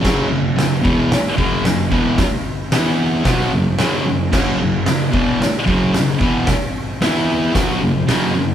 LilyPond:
<<
  \new Staff \with { instrumentName = "Distorted electric guitar" } { \clef bass \time 4/4 \key e \lydian \tempo 4 = 112 <fis, cis fis>8 <fis, cis>8 <fis, cis>8 <e, b, e>8 r8 <fis, cis fis>8 <fis, cis>8 <e, b, e>8 | r4 <e b e'>4 <b, fis b>8 <fis, cis>8 <fis, cis fis>8 <fis, cis>8 | <fis, cis fis>8 <fis, cis>8 <fis, cis>8 <e, b, e>8 r8 <fis, cis fis>8 <fis, cis>8 <e, b, e>8 | r4 <e b e'>4 <b, fis b>8 <fis, cis>8 <fis, cis fis>8 <fis, cis>8 | }
  \new DrumStaff \with { instrumentName = "Drums" } \drummode { \time 4/4 <cymc bd sn>4 <hho sn>8 bd8 <hho sn>8 bd8 <hho sn>8 bd8 | <hho bd sn>4 <hho sn>4 <hho bd sn>4 <hho sn>4 | <cymc bd sn>4 <hho sn>8 bd8 <hho sn>8 bd8 <hho sn>8 bd8 | <hho bd sn>4 <hho sn>4 <hho bd sn>4 <hho sn>4 | }
>>